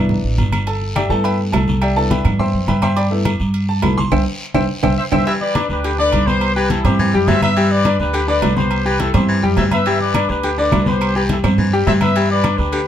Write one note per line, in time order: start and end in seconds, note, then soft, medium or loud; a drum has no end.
0.00 0.22 C2 medium
0.00 0.63 B3 medium
0.00 0.63 D4 medium
0.00 0.64 E4 medium
0.09 high conga soft
0.09 low conga medium
0.09 long guiro medium
0.23 0.37 A1 medium
0.23 high conga soft
0.38 1.05 G1 loud
0.38 high conga medium
0.38 low agogo medium
0.38 short guiro medium
0.52 high conga medium
0.52 low agogo loud
0.52 short guiro medium
0.52 claves medium
0.67 0.94 A4 medium
0.67 0.94 A5 medium
0.67 high conga soft
0.67 low agogo medium
0.67 long guiro medium
0.81 high conga soft
0.96 1.10 G4 medium
0.96 1.10 D5 medium
0.96 1.10 E5 medium
0.96 1.10 G5 medium
0.96 high conga loud
0.96 low agogo loud
0.96 short guiro medium
0.96 claves medium
1.09 1.50 G2 medium
1.09 1.78 A3 medium
1.09 1.78 B3 medium
1.09 1.79 E4 medium
1.09 1.24 A4 medium
1.09 1.24 A5 loud
1.09 high conga soft
1.09 short guiro medium
1.24 1.38 B4 medium
1.24 1.38 E5 medium
1.24 1.38 G5 medium
1.24 1.38 B5 loud
1.24 high conga soft
1.24 low agogo medium
1.24 long guiro medium
1.39 high conga soft
1.52 2.20 C2 medium
1.52 1.80 A4 medium
1.52 1.80 A5 medium
1.52 high conga medium
1.52 low timbale medium
1.52 low agogo loud
1.52 short guiro medium
1.52 claves medium
1.68 high conga medium
1.68 short guiro medium
1.82 1.96 G4 medium
1.82 1.96 D5 medium
1.82 1.96 E5 medium
1.82 1.96 G5 medium
1.82 low agogo loud
1.82 long guiro medium
1.82 claves medium
1.96 2.93 B3 medium
1.96 2.93 D4 medium
1.96 2.93 E4 medium
1.96 2.10 A4 medium
1.96 2.10 A5 loud
1.96 high conga soft
2.11 2.25 B4 medium
2.11 2.25 E5 medium
2.11 2.25 G5 medium
2.11 2.25 B5 medium
2.11 high conga loud
2.11 low agogo medium
2.11 short guiro medium
2.25 2.52 G2 medium
2.25 high conga soft
2.25 low conga medium
2.25 low agogo medium
2.25 short guiro medium
2.25 claves medium
2.39 2.66 C5 medium
2.39 2.66 E5 medium
2.39 2.66 G5 medium
2.39 2.66 C6 medium
2.39 high conga soft
2.39 low conga medium
2.39 long guiro medium
2.54 2.67 F#2 medium
2.54 high conga soft
2.68 3.34 G2 medium
2.68 2.82 B4 medium
2.68 2.81 E5 medium
2.68 2.81 G5 medium
2.68 2.82 B5 medium
2.68 high conga medium
2.68 low agogo medium
2.68 short guiro medium
2.82 2.97 C5 medium
2.82 2.97 E5 medium
2.82 2.95 G5 medium
2.82 2.96 C6 medium
2.82 high conga medium
2.82 low agogo loud
2.82 short guiro medium
2.82 claves medium
2.96 3.06 D5 medium
2.96 3.06 G5 medium
2.96 3.05 B5 medium
2.96 3.05 D6 loud
2.96 high conga soft
2.96 low agogo medium
2.96 long guiro medium
3.11 3.30 A3 medium
3.11 3.30 B3 medium
3.11 3.31 E4 medium
3.11 high conga soft
3.25 high conga loud
3.25 low agogo loud
3.25 short guiro medium
3.25 claves medium
3.40 3.80 G2 medium
3.40 high conga soft
3.40 short guiro medium
3.54 high conga soft
3.54 low agogo medium
3.54 long guiro medium
3.69 3.83 A5 loud
3.69 high conga soft
3.82 4.10 C2 medium
3.82 3.96 A3 medium
3.82 3.96 B3 soft
3.82 3.96 E4 medium
3.82 3.97 B5 medium
3.82 high conga medium
3.82 low timbale medium
3.82 low agogo loud
3.82 short guiro medium
3.82 claves medium
3.97 4.11 C6 loud
3.97 high conga medium
3.97 short guiro medium
4.12 4.22 C2 medium
4.12 4.21 C5 medium
4.12 4.21 E5 medium
4.12 4.21 G5 medium
4.12 high conga loud
4.12 high timbale loud
4.12 long guiro loud
4.12 claves loud
4.54 4.65 C2 medium
4.54 4.64 C5 loud
4.54 4.64 E5 loud
4.54 4.64 G5 loud
4.54 high conga loud
4.54 high timbale medium
4.54 long guiro medium
4.54 claves loud
4.83 4.94 C2 medium
4.83 4.93 C5 loud
4.83 4.93 E5 loud
4.83 4.93 G5 loud
4.83 high conga loud
4.83 high timbale loud
4.83 long guiro loud
4.83 claves loud
4.99 5.05 C5 medium
4.99 5.05 E5 loud
5.12 5.23 C2 medium
5.12 5.21 C5 loud
5.12 5.26 C5 medium
5.12 5.21 E5 medium
5.12 5.26 E5 loud
5.12 5.21 G5 loud
5.12 high conga loud
5.12 high timbale loud
5.12 long guiro loud
5.12 claves loud
5.26 5.59 E3 medium
5.26 5.50 G3 medium
5.26 5.50 G4 medium
5.26 5.34 B4 medium
5.26 5.33 E5 loud
5.26 5.50 G5 medium
5.26 high conga soft
5.26 low agogo medium
5.26 long guiro medium
5.41 5.68 B4 medium
5.41 5.68 D5 loud
5.41 high conga soft
5.55 5.79 D4 medium
5.55 5.79 D5 medium
5.55 5.79 D6 medium
5.55 high conga loud
5.55 low agogo loud
5.55 short guiro medium
5.69 6.10 D2 medium
5.69 5.97 G4 medium
5.69 5.96 B4 medium
5.69 high conga soft
5.69 short guiro medium
5.84 5.92 D3 medium
5.84 5.96 G4 medium
5.84 5.96 G5 medium
5.84 5.96 G6 medium
5.84 high conga soft
5.84 low agogo medium
5.84 long guiro medium
5.98 6.31 D3 medium
5.98 6.22 D4 medium
5.98 6.26 B4 medium
5.98 6.25 D5 loud
5.98 6.22 D5 medium
5.98 6.22 D6 medium
5.98 high conga soft
6.12 6.79 C2 medium
6.12 high conga medium
6.12 low agogo loud
6.12 short guiro medium
6.27 6.51 B3 medium
6.27 6.55 G4 medium
6.27 6.51 B4 medium
6.27 6.56 C5 loud
6.27 6.51 B5 medium
6.27 high conga medium
6.27 short guiro medium
6.41 high conga soft
6.41 low agogo loud
6.41 long guiro medium
6.56 6.79 E3 medium
6.56 6.80 G4 medium
6.56 6.70 G4 medium
6.56 6.69 B4 loud
6.56 6.80 G5 medium
6.56 6.80 G6 medium
6.56 high conga soft
6.70 6.84 E4 medium
6.70 6.85 A4 loud
6.70 high conga loud
6.70 low agogo medium
6.70 short guiro medium
6.84 7.11 G2 loud
6.84 7.09 C4 medium
6.84 7.28 E4 medium
6.84 7.28 G4 loud
6.84 7.09 C5 medium
6.84 7.09 C6 medium
6.84 high conga soft
6.84 low conga medium
6.84 low agogo medium
6.84 short guiro medium
6.99 7.14 E3 loud
6.99 high conga soft
6.99 low conga medium
6.99 long guiro medium
7.13 7.27 F#2 medium
7.13 7.37 G3 medium
7.13 7.37 G4 loud
7.13 7.38 G5 loud
7.13 high conga soft
7.28 7.94 G2 medium
7.28 7.43 E3 medium
7.28 7.43 C5 medium
7.28 7.41 E5 loud
7.28 high conga medium
7.28 low timbale medium
7.28 low agogo medium
7.28 short guiro medium
7.42 7.54 B3 medium
7.42 7.54 B4 medium
7.42 7.69 B4 medium
7.42 7.69 E5 loud
7.42 7.54 B5 medium
7.42 high conga medium
7.42 low agogo loud
7.42 short guiro medium
7.56 7.88 E3 medium
7.56 7.80 G3 medium
7.56 7.80 G4 medium
7.56 7.80 G5 medium
7.56 high conga soft
7.56 low agogo medium
7.56 long guiro medium
7.71 7.99 B4 medium
7.71 8.00 D5 loud
7.71 high conga soft
7.85 8.09 D4 medium
7.85 8.09 D5 medium
7.85 8.09 D6 medium
7.85 high conga medium
7.85 low agogo loud
7.85 short guiro medium
8.00 8.40 D2 loud
8.00 8.27 G4 medium
8.00 8.27 B4 medium
8.00 high conga soft
8.00 short guiro medium
8.13 8.21 D3 medium
8.13 8.26 G4 medium
8.13 8.26 G5 medium
8.13 8.26 G6 medium
8.13 high conga soft
8.13 low agogo medium
8.13 long guiro medium
8.28 8.60 D3 medium
8.28 8.51 D4 medium
8.28 8.55 B4 medium
8.28 8.52 D5 medium
8.28 8.55 D5 loud
8.28 8.52 D6 medium
8.28 high conga soft
8.42 9.09 C2 loud
8.42 high conga medium
8.42 low timbale medium
8.42 low agogo loud
8.42 short guiro medium
8.57 8.80 B3 medium
8.57 8.84 G4 medium
8.57 8.81 B4 medium
8.57 8.84 C5 loud
8.57 8.81 B5 medium
8.57 high conga medium
8.57 short guiro medium
8.71 high conga soft
8.71 low agogo loud
8.71 long guiro medium
8.86 9.08 E3 medium
8.86 9.09 G4 medium
8.86 9.00 G4 medium
8.86 9.00 B4 loud
8.86 9.09 G5 medium
8.86 9.09 G6 medium
8.86 high conga soft
9.00 9.14 E4 medium
9.00 9.15 A4 loud
9.00 high conga medium
9.00 low agogo medium
9.00 short guiro medium
9.14 9.41 G2 medium
9.14 9.38 C4 medium
9.14 9.55 E4 medium
9.14 9.55 G4 medium
9.14 9.38 C5 medium
9.14 9.38 C6 medium
9.14 high conga soft
9.14 low conga medium
9.14 low agogo loud
9.14 short guiro medium
9.28 9.44 E3 medium
9.28 high conga soft
9.28 long guiro medium
9.43 9.56 F#2 medium
9.43 9.67 G3 medium
9.43 9.67 G4 medium
9.43 9.67 G5 medium
9.43 high conga soft
9.57 10.24 G2 medium
9.57 9.72 E3 medium
9.57 9.65 C5 medium
9.57 9.65 E5 medium
9.57 high conga medium
9.57 low timbale medium
9.57 low agogo medium
9.57 short guiro medium
9.71 9.83 B3 medium
9.71 9.84 B4 medium
9.71 9.99 B4 medium
9.71 9.99 E5 loud
9.71 9.84 B5 medium
9.71 high conga medium
9.71 low agogo loud
9.71 short guiro medium
9.86 10.18 E3 medium
9.86 10.10 G3 medium
9.86 10.10 G4 medium
9.86 10.10 G5 medium
9.86 high conga soft
9.86 low agogo medium
9.86 long guiro medium
10.00 10.28 B4 medium
10.00 10.28 D5 loud
10.00 high conga soft
10.14 10.38 D4 medium
10.14 10.39 D5 medium
10.14 10.39 D6 medium
10.14 high conga loud
10.14 low agogo loud
10.14 short guiro medium
10.14 claves medium
10.29 10.69 D2 medium
10.29 10.58 G4 medium
10.29 10.58 B4 medium
10.29 high conga soft
10.29 short guiro medium
10.43 10.51 D3 medium
10.43 10.55 G4 medium
10.43 10.56 G5 medium
10.43 10.56 G6 medium
10.43 high conga soft
10.43 low agogo medium
10.43 long guiro medium
10.58 10.90 D3 medium
10.58 10.81 D4 medium
10.58 10.85 B4 medium
10.58 10.82 D5 medium
10.58 10.85 D5 medium
10.58 10.82 D6 medium
10.58 high conga soft
10.72 11.38 C2 medium
10.72 high conga medium
10.72 low timbale medium
10.72 low agogo loud
10.72 short guiro medium
10.72 claves medium
10.86 11.10 B3 medium
10.86 11.15 G4 medium
10.86 11.10 B4 medium
10.86 11.16 C5 medium
10.86 11.10 B5 medium
10.86 high conga medium
10.86 short guiro medium
11.01 high conga soft
11.01 low agogo loud
11.01 long guiro medium
11.01 claves medium
11.15 11.38 E3 medium
11.15 11.39 G4 medium
11.15 11.23 G4 medium
11.15 11.23 B4 medium
11.15 11.39 G5 medium
11.15 11.39 G6 medium
11.15 high conga soft
11.29 11.37 E4 medium
11.29 11.37 A4 medium
11.29 high conga loud
11.29 low agogo medium
11.29 short guiro medium
11.44 11.84 G2 loud
11.44 11.67 C4 medium
11.44 11.67 C5 medium
11.44 11.68 C6 medium
11.44 high conga soft
11.44 low conga medium
11.44 low agogo medium
11.44 short guiro medium
11.44 claves medium
11.58 11.73 E3 medium
11.58 high conga soft
11.58 low conga medium
11.58 long guiro medium
11.72 11.96 G3 medium
11.72 11.97 G4 medium
11.72 11.97 G5 medium
11.72 high conga soft
11.87 12.53 G2 medium
11.87 12.02 E3 medium
11.87 11.94 C5 medium
11.87 11.93 E5 loud
11.87 high conga medium
11.87 low timbale medium
11.87 low agogo medium
11.87 short guiro medium
12.01 12.13 B3 medium
12.01 12.13 B4 medium
12.01 12.29 B4 medium
12.01 12.28 E5 loud
12.01 12.14 B5 medium
12.01 high conga medium
12.01 low agogo loud
12.01 short guiro medium
12.01 claves medium
12.15 12.48 E3 medium
12.15 12.39 G3 medium
12.15 12.39 G4 medium
12.15 12.40 G5 medium
12.15 high conga soft
12.15 low agogo medium
12.15 long guiro medium
12.30 12.57 B4 medium
12.30 12.57 D5 loud
12.30 high conga soft
12.44 12.68 D4 medium
12.44 12.68 D5 medium
12.44 12.68 D6 medium
12.44 high conga loud
12.44 low agogo loud
12.44 short guiro medium
12.44 claves medium
12.58 12.88 D2 loud
12.58 12.87 G4 medium
12.58 12.87 B4 medium
12.58 high conga soft
12.58 short guiro medium
12.72 12.80 D3 medium
12.72 12.85 G4 medium
12.72 12.85 G5 medium
12.72 12.85 G6 medium
12.72 high conga soft
12.72 low agogo medium
12.72 long guiro medium